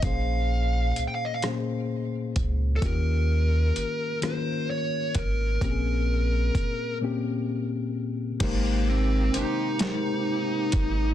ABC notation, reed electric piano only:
X:1
M:6/8
L:1/8
Q:3/8=43
K:Bbdor
V:1 name="Reed electric piano"
[B,,B,DAc]3 [B,,B,DAc]3 | [E,B,DFG]3 [E,B,DFB]3 | [B,,B,CDGA]3 [B,,B,CDG]3 | [A,EGBc]3 [A,EGBc]3 |]